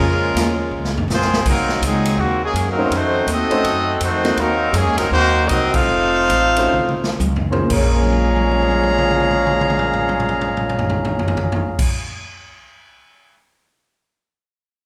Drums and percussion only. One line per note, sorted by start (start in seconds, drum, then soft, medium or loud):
0.36 snare medium
0.36 hi-hat pedal medium
0.36 ride medium
0.85 snare medium
0.97 floor tom medium
1.10 snare medium
1.10 hi-hat pedal medium
1.21 snare medium
1.34 snare loud
1.46 kick medium
1.46 crash medium
1.69 snare medium
1.82 hi-hat pedal medium
1.82 ride medium
2.05 ride medium
2.56 hi-hat pedal medium
2.56 ride medium
2.92 ride medium
3.27 hi-hat pedal medium
3.27 ride medium
3.51 ride medium
3.64 ride medium
4.01 hi-hat pedal medium
4.01 ride medium
4.25 snare medium
4.25 ride medium
4.37 ride medium
4.74 hi-hat pedal medium
4.74 ride medium
4.98 snare soft
4.98 ride medium
5.49 hi-hat pedal medium
5.49 ride medium
5.74 kick medium
5.74 crash medium
6.30 hi-hat pedal medium
6.30 ride medium
6.56 ride medium
6.74 mid tom medium
6.89 mid tom medium
7.04 snare medium
7.20 hi-hat pedal medium
7.20 high tom medium
7.36 floor tom medium
7.53 floor tom medium
7.70 kick loud
7.70 crash loud
8.03 high tom soft
8.13 high tom medium
8.22 high tom soft
8.36 high tom medium
8.51 high tom medium
8.62 high tom medium
8.71 high tom medium
8.83 high tom medium
8.98 mid tom medium
9.11 mid tom medium
9.20 mid tom medium
9.31 mid tom medium
9.46 mid tom medium
9.61 mid tom medium
9.70 mid tom medium
9.79 mid tom medium
9.93 mid tom medium
10.09 mid tom medium
10.20 mid tom medium
10.29 mid tom medium
10.41 mid tom medium
10.57 mid tom medium
10.69 mid tom medium
10.79 floor tom medium
10.90 floor tom medium
11.05 floor tom medium
11.19 floor tom medium
11.28 floor tom loud
11.37 floor tom medium
11.52 floor tom medium
11.79 kick loud
11.79 crash loud